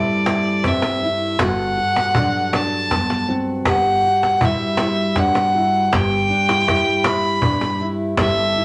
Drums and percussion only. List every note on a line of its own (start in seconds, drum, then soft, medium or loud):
0.08 cajon slap soft
0.26 cajon slap medium
0.64 cajon bass medium
0.64 cajon slap soft
0.82 cajon slap medium
1.39 cajon bass medium
1.39 cajon slap medium
1.78 cajon slap soft
1.96 cajon slap medium
2.15 cajon bass medium
2.34 cajon slap soft
2.53 cajon slap medium
2.91 cajon bass medium
2.91 cajon slap soft
3.10 cajon slap medium
3.65 cajon bass medium
3.65 cajon slap medium
4.04 cajon slap soft
4.23 cajon slap medium
4.41 cajon bass medium
4.60 cajon slap soft
4.77 cajon slap medium
5.16 cajon bass medium
5.16 cajon slap soft
5.35 cajon slap medium
5.93 cajon bass loud
5.93 cajon slap medium
6.49 cajon slap medium
6.68 cajon bass loud
6.68 cajon slap soft
6.87 cajon slap soft
7.04 cajon slap medium
7.24 cajon slap soft
7.42 cajon bass medium
7.61 cajon slap medium
8.17 cajon bass medium
8.17 cajon slap medium
8.55 cajon slap soft